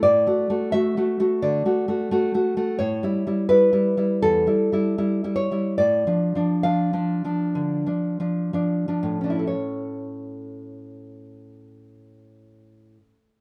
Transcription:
0.03 A2 D5
0.27 A3 F#4
0.50 A3 F#4
0.72 A3 F#4 E5
0.97 A3 F#4
1.20 A3 F#4
1.42 D3 D5
1.65 A3 F#4
1.88 A3 F#4
2.11 A3 F#4
2.34 A3 F#4
2.57 A3 F#4
2.79 A2 C#5
3.03 G3 E4
3.27 G3 E4
3.49 G3 E4 B4
3.73 G3 E4
3.97 G3 E4
4.22 E2 A4
4.47 G3 E4
4.72 G3 E4
4.98 G3 E4
5.24 G3 E4
5.36 C#5
5.51 G3 E4
5.78 A2 D5
6.07 F3 D4
6.35 F3 D4
6.63 F3 D4 F5
6.93 F3 D4
7.24 F3 D4
7.55 D3
7.86 F3 D4
8.20 F3 D4
8.53 F3 D4
8.88 F3 D4
9.03 A2
9.21 F3 C#4 D4
9.30 E4
9.39 A4
9.47 C#5

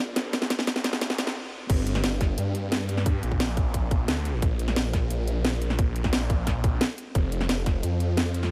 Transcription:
Already playing: A#1
0.16 snare, closed hi-hat
0.33 kick, snare, closed hi-hat
0.42 snare
0.50 snare, closed hi-hat
0.59 snare
0.67 G#1, kick, snare, closed hi-hat
0.76 snare
0.84 snare, closed hi-hat
0.93 snare
1.01 kick, snare, closed hi-hat
1.10 snare
1.18 C2, snare, closed hi-hat
1.27 snare
1.70 G1, kick, closed hi-hat, crash
1.87 closed hi-hat
1.95 snare
2.04 G1, snare, closed hi-hat
2.21 kick, snare, closed hi-hat
2.38 G2, closed hi-hat
2.55 closed hi-hat
2.72 snare, closed hi-hat
2.89 closed hi-hat
2.97 snare
3.06 kick, closed hi-hat
3.23 A#1, closed hi-hat
3.32 kick
3.40 snare, closed hi-hat
3.57 kick, closed hi-hat
3.74 kick, closed hi-hat
3.91 kick, closed hi-hat
4.08 D2, snare, closed hi-hat
4.25 closed hi-hat
4.42 A#1, kick, closed hi-hat
4.59 closed hi-hat
4.68 snare
4.76 A#1, snare, closed hi-hat
4.93 kick, snare, closed hi-hat
5.10 A#1, closed hi-hat
5.28 closed hi-hat
5.45 snare, closed hi-hat
5.62 closed hi-hat
5.70 snare
5.79 kick, closed hi-hat
5.96 A#1, closed hi-hat
6.04 kick, snare
6.13 snare, closed hi-hat
6.30 kick, closed hi-hat
6.47 kick, snare, closed hi-hat
6.64 kick, closed hi-hat
6.81 snare, closed hi-hat
6.98 closed hi-hat
7.15 F1, kick, closed hi-hat
7.32 closed hi-hat
7.41 snare
7.49 F1, snare, closed hi-hat
7.66 kick, snare, closed hi-hat
7.83 F2, closed hi-hat
8.00 closed hi-hat
8.17 snare, closed hi-hat
8.34 closed hi-hat
8.43 snare

